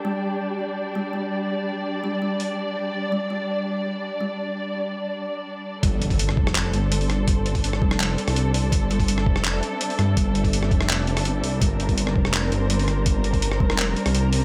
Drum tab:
HH |----------------|----------o-----|----------------|----------------|
CP |----------------|----------------|----------------|----------------|
SD |----------------|----------------|----------------|----------------|
BD |----------------|----------------|----------------|----------------|

HH |x-xox---x-x-xox-|x-xox---x-xox-o-|x-xox---x-x-xox-|x-xox-x-x-xox-o-|
CP |--------x-------|--------x-------|--------x-------|--------x-------|
SD |-----r-r------r-|-----r-r---r----|-----r-r------r-|-----r-r---r----|
BD |o--o--o---------|o--o--o---------|o--o--o---------|o--o--o---------|

HH |x-xox---x-x-xox-|x-xox---x-xox-o-|
CP |--------x-------|--------x-------|
SD |-----r-r------r-|-----r-r---r----|
BD |o--o--o---------|o--o--o---------|